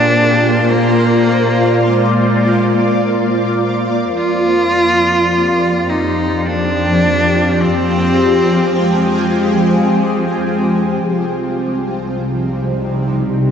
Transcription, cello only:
0.00 0.71 D4 loud
0.69 1.87 A#3 loud
1.85 3.58 G#3 medium
4.17 5.91 F4 loud
5.89 6.48 D#4 medium
6.46 7.63 D4 loud
7.62 8.79 C4 loud
8.77 10.50 G#3 medium
10.51 11.04 G#3 medium

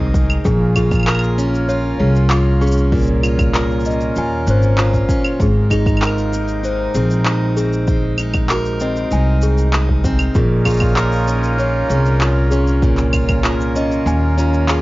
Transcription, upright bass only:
0.00 0.36 C2 medium
0.45 1.91 A#1 loud
2.00 4.08 C2 medium
4.16 4.46 D#2 medium
4.47 5.00 G#1 loud
5.40 6.86 G#1 medium
6.95 9.03 A#1 medium
9.12 10.26 C2 medium
10.35 11.81 A#1 loud
11.89 13.97 C2 medium
14.06 14.82 D#2 medium

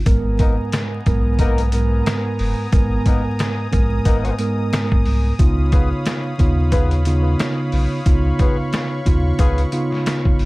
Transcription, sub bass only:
0.06 0.59 G#1 loud
1.07 2.02 B1 loud
2.39 2.54 F#1 medium
2.73 2.99 G#1 medium
3.73 3.99 A#1 medium
4.06 4.32 G#1 medium
5.06 5.32 C2 medium
5.39 5.92 C#2 loud
6.40 7.36 D#2 loud
7.73 7.87 B1 medium
8.06 8.33 C#2 loud
9.07 9.33 D#2 medium
9.39 9.66 C#2 loud
10.40 10.45 G1 loud

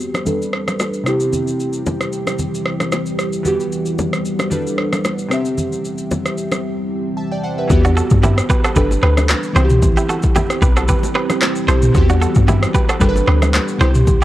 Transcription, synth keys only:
0.00 0.23 E3 medium
0.00 0.24 B3 medium
0.00 0.25 F#4 medium
0.00 0.26 G4 medium
0.25 1.06 G3 medium
0.25 1.06 D4 medium
0.25 1.06 A4 medium
0.25 1.07 B4 medium
1.04 3.13 C3 medium
1.04 3.14 C4 medium
1.04 3.15 E4 medium
1.09 3.16 G4 medium
3.43 4.48 E3 medium
3.43 4.49 B3 medium
3.43 4.50 F#4 medium
3.48 4.51 G4 medium
4.50 5.30 G3 medium
4.50 5.31 D4 medium
4.50 5.31 A4 medium
4.50 5.32 B4 medium
5.29 7.38 C3 medium
5.29 7.39 C4 medium
5.29 7.40 G4 medium
5.34 7.15 E5 medium
7.17 7.31 E5 medium
7.17 7.31 A5 medium
7.32 7.43 D5 medium
7.32 7.43 G5 medium
7.44 7.58 C5 medium
7.44 7.57 F#5 medium
7.58 7.84 B4 medium
7.58 7.83 E5 medium
7.68 8.73 E3 medium
7.68 8.74 B3 medium
7.68 8.75 F#4 medium
7.72 8.75 G4 medium
8.75 9.55 G3 medium
8.75 9.56 D4 medium
8.75 9.56 A4 medium
8.75 9.57 B4 medium
9.53 11.63 E3 medium
9.53 11.64 C4 medium
9.53 11.65 E4 medium
9.58 9.64 F#4 medium
9.65 11.68 G4 medium
11.67 11.94 C3 medium
11.67 11.95 C4 medium
11.67 11.95 E4 medium
11.67 11.95 G4 medium
11.92 12.98 E3 medium
11.92 12.98 B3 medium
11.92 12.99 F#4 medium
11.97 13.00 G4 medium
13.00 13.80 G3 medium
13.00 13.80 D4 medium
13.00 13.81 A4 medium
13.00 13.09 A#4 medium
13.09 13.84 B4 medium
13.78 14.24 C3 medium
13.78 14.24 C4 medium
13.78 14.24 E4 medium
13.83 14.24 G4 medium

